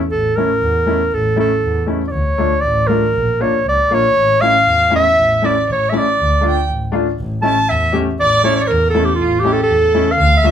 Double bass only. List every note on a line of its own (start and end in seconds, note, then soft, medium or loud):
0.11 0.42 A1 medium
0.62 0.92 E2 medium
1.12 1.43 A1 loud
1.62 1.93 E2 medium
2.11 2.42 D2 medium
2.63 2.94 A1 loud
3.13 3.44 A#1 medium
3.64 3.88 C#2 medium
3.90 4.13 A#1 medium
4.14 4.45 A1 loud
4.67 4.97 E2 medium
5.16 5.47 A1 medium
5.67 5.98 A1 medium
6.18 6.48 D2 medium
6.68 6.98 A1 medium
7.19 7.49 A1 loud
7.69 7.99 E2 medium
8.19 8.49 A1 medium
8.70 9.00 E2 medium
9.19 9.49 A1 medium
9.69 9.99 E2 medium
10.17 10.48 D2 loud